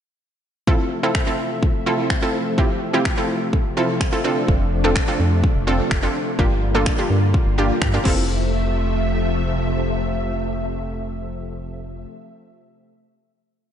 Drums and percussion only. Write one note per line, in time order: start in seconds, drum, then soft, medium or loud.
0.67 kick loud
1.15 finger snap loud
1.15 kick loud
1.63 kick loud
2.10 finger snap loud
2.10 kick loud
2.58 kick loud
3.05 finger snap loud
3.05 kick loud
3.53 kick loud
4.01 finger snap loud
4.01 kick loud
4.48 kick loud
4.96 finger snap loud
4.96 kick loud
5.44 kick loud
5.91 finger snap loud
5.91 kick loud
6.39 kick loud
6.86 finger snap loud
6.86 kick loud
7.34 kick loud
7.82 finger snap loud
7.82 kick loud
8.05 kick loud
8.05 crash medium